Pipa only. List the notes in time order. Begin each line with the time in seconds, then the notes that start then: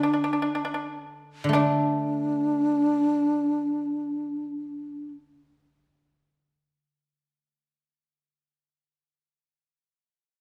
0.03 D4
0.13 D4
0.24 D4
0.33 D4
0.42 D4
0.55 D4
0.65 D4
0.74 D4
1.53 D4